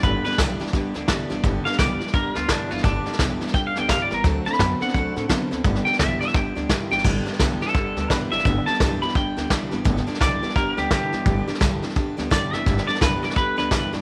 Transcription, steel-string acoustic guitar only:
X:1
M:4/4
L:1/8
Q:"Swing" 1/4=171
K:G
V:1 name="Steel-string acoustic guitar"
[G,,D,G,B,DG] [G,B,DG] [G,,D,G,B,DG] [G,B,DG] [G,B,DG] [G,B,DG] [G,,D,G,B,DG] [G,B,DG] | [G,,D,G,B,DG] [G,B,DG] [G,,D,G,B,DG] [G,B,DG] [G,B,DG] [G,B,DG] [G,,D,G,B,DG] [G,B,DG] | [G,,D,G,B,DG] [G,B,DG] [G,,D,G,B,DG] [G,B,DG] [G,B,DG] [G,B,DG] [G,,D,G,B,DG] [G,B,DG] | [D,F,CDA] [CDA] [D,F,CDA] [CDA] [F,CDA] [CDA] [D,F,CDA] [CDA] |
[G,,D,G,B,DG] [G,B,DG] [G,,D,G,B,DG] [G,B,DG] [G,B,DG] [G,B,DG] [G,,D,G,B,DG] [G,B,DG] | [G,,D,G,B,DG] [G,B,DG] [G,,D,G,B,DG] [G,B,DG] [G,B,DG] [G,B,DG] [G,,D,G,B,DG] [G,B,DG] | [G,,D,G,B,DG] [G,B,DG] [G,,D,G,B,DG] [G,B,DG] [G,B,DG] [G,B,DG] [G,,D,G,B,DG] [G,B,DG] | [G,,D,G,B,DG] [G,B,DG] [G,,D,G,B,DG] [G,B,DG] [G,B,DG] [G,B,DG] [G,,D,G,B,DG] [G,B,DG] |
[G,,D,G,B,DG] [G,B,DG] [G,,D,G,B,DG] [G,B,DG] [G,B,DG] [G,B,DG] [G,,D,G,B,DG] [G,B,DG] | [G,,D,G,B,DG] [G,B,DG] [G,,D,G,B,DG] [G,B,DG] [G,B,DG] [G,B,DG] [G,,D,G,B,DG] [G,B,DG] |]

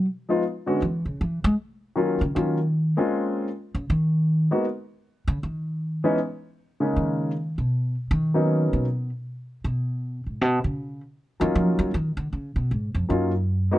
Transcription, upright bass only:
X:1
M:4/4
L:1/8
Q:"Swing" 1/4=156
K:Ebm
V:1 name="Upright bass" clef=bass
z4 =E, ^C, E, ^G, | z3 D, E,3 z | z3 D, E,3 z | z3 D, E,3 z |
z4 ^D,3 =B,,- | =B,, z ^D,3 B,,2 z | z2 C,3 A,, C, D,- | D, z2 _F, =F, G, E, =D, |
D, C, A,, F,, G,,3 z |]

